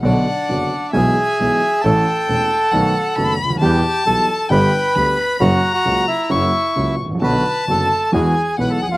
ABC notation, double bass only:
X:1
M:4/4
L:1/8
Q:1/4=134
K:Bm
V:1 name="Double bass" clef=bass
B,,, z F,,, z B,,, z B,,, z | A,,, z E,,, z B,,, z F,,, D,, | E,, z B,,, z G,,, z D,, z | F,,, z C,, z F,,, z C,, A,,, |
B,,, z F,,, z E,, z B,,, B,,, |]